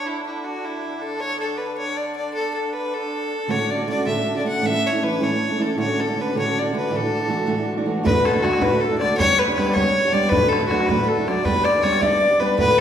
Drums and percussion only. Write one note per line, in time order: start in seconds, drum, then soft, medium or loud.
8.07 bodhran loud
8.25 bodhran medium
8.45 bodhran medium
8.53 bodhran medium
8.62 bodhran medium
9.01 bodhran medium
9.20 bodhran medium
9.39 bodhran medium
9.58 bodhran medium
9.67 bodhran medium
9.76 bodhran medium
10.15 bodhran soft
10.32 bodhran medium
10.53 bodhran medium
10.71 bodhran medium
10.80 bodhran medium
10.89 bodhran medium
11.28 bodhran medium
11.45 bodhran medium
11.65 bodhran medium
11.84 bodhran medium
11.93 bodhran medium
12.02 bodhran medium
12.59 bodhran medium